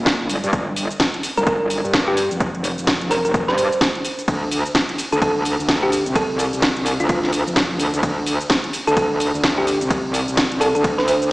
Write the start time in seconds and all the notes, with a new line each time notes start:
Already playing: A#1
0.06 kick, snare, open hi-hat, cabasa
0.29 G1, open hi-hat, cabasa
0.44 G2, closed hi-hat, cabasa
0.53 G1, kick, closed hi-hat, cabasa
0.76 open hi-hat, cabasa
0.91 closed hi-hat, cabasa
1.00 kick, snare, closed hi-hat, cabasa
1.14 closed hi-hat
1.23 open hi-hat, cabasa
1.37 G1 A#4, closed hi-hat, cabasa
1.47 A#4, kick, closed hi-hat, cabasa
1.70 open hi-hat, cabasa
1.84 G2, cabasa
1.93 kick, snare, closed hi-hat, cabasa
2.08 G4
2.17 open hi-hat, cabasa
2.31 F1, closed hi-hat, cabasa
2.40 kick, closed hi-hat, cabasa
2.55 closed hi-hat
2.64 open hi-hat, cabasa
2.78 F1, closed hi-hat, cabasa
2.87 kick, snare, closed hi-hat, cabasa
3.01 closed hi-hat
3.11 A#4, open hi-hat, cabasa
3.25 F1 A#4, closed hi-hat, cabasa
3.34 kick, closed hi-hat, cabasa
3.48 G2 C5, snare
3.58 open hi-hat, cabasa
3.72 cabasa
3.81 kick, snare, open hi-hat, cabasa
3.95 closed hi-hat
4.05 open hi-hat, cabasa
4.19 closed hi-hat, cabasa
4.28 D2, kick, closed hi-hat, ride, cabasa
4.51 open hi-hat, cabasa
4.66 closed hi-hat, cabasa
4.75 kick, snare, closed hi-hat, ride, cabasa
4.89 closed hi-hat
4.98 open hi-hat, cabasa
5.12 D2 A4, closed hi-hat, cabasa
5.22 A4, kick, closed hi-hat, ride, cabasa
5.45 open hi-hat, cabasa
5.59 D2, cabasa
5.69 kick, snare, closed hi-hat, ride, cabasa
5.83 G4
5.92 open hi-hat, cabasa
6.06 C2, closed hi-hat, cabasa
6.15 A4, kick, closed hi-hat, ride, cabasa
6.39 open hi-hat, cabasa
6.53 C2, closed hi-hat, cabasa
6.62 kick, snare, closed hi-hat, ride, cabasa
6.77 closed hi-hat
6.86 open hi-hat, cabasa
7.00 D2 F4, closed hi-hat, cabasa
7.09 F4, kick, closed hi-hat, ride, cabasa
7.23 snare
7.33 open hi-hat, cabasa
7.47 F1, cabasa
7.56 kick, snare, open hi-hat, ride, cabasa
7.79 D2, open hi-hat, cabasa
7.94 D2, closed hi-hat, cabasa
8.03 D2, kick, closed hi-hat, ride, cabasa
8.26 open hi-hat, cabasa
8.41 closed hi-hat, cabasa
8.50 kick, snare, closed hi-hat, ride, cabasa
8.64 closed hi-hat
8.73 open hi-hat, cabasa
8.87 D2 A4, closed hi-hat, cabasa
8.97 A4, kick, closed hi-hat, ride, cabasa
9.20 open hi-hat, cabasa
9.34 D2, cabasa
9.44 kick, snare, closed hi-hat, ride, cabasa
9.58 G4
9.67 open hi-hat, cabasa
9.81 C2, closed hi-hat, cabasa
9.90 kick, closed hi-hat, ride, cabasa
10.14 open hi-hat, cabasa
10.28 C2, closed hi-hat, cabasa
10.37 kick, snare, closed hi-hat, ride, cabasa
10.52 closed hi-hat
10.61 A4, open hi-hat, cabasa
10.75 D2 A4, closed hi-hat, cabasa
10.84 kick, closed hi-hat, ride, cabasa
10.98 D2 C5, snare
11.08 open hi-hat, cabasa
11.22 closed hi-hat, cabasa